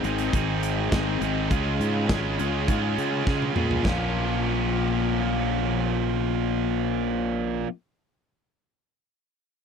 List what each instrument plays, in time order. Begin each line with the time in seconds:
0.03 fingered electric bass G#1, distorted electric guitar G#2 D#3 G#3 C4 D#4 G#4, closed hi-hat
0.18 closed hi-hat
0.32 fingered electric bass G#1, distorted electric guitar G#2 D#3 G#3 C4 D#4 G#4, kick, closed hi-hat
0.63 closed hi-hat
0.91 fingered electric bass G#1, distorted electric guitar G#2 D#3 G#3 C4 D#4 G#4, kick, snare, closed hi-hat
1.20 fingered electric bass G#1, distorted electric guitar G#2 D#3 G#3 C4 D#4 G#4, closed hi-hat
1.49 fingered electric bass C#2, distorted electric guitar C#3 G#3 C#4 F4 G#4, kick, closed hi-hat
1.80 fingered electric bass G#2, closed hi-hat
2.08 fingered electric bass G#1, distorted electric guitar C#3 G#3 C#4 F4 G#4, kick, snare, closed hi-hat
2.38 fingered electric bass C#2, distorted electric guitar C#3 G#3 C#4 F4 G#4, closed hi-hat
2.67 fingered electric bass G#2, distorted electric guitar C#3 G#3 C#4 F4 G#4, kick, closed hi-hat
2.98 fingered electric bass C#3, closed hi-hat
3.26 distorted electric guitar C#3 G#3 C#4 F4 G#4, fingered electric bass C#3, kick, snare
3.42 high tom
3.54 fingered electric bass A#2, distorted electric guitar C#3 G#3 C#4 F4 G#4, mid tom
3.71 floor tom
3.83 fingered electric bass A#1, distorted electric guitar A#2 F3 A#3 C#4 F4, kick, snare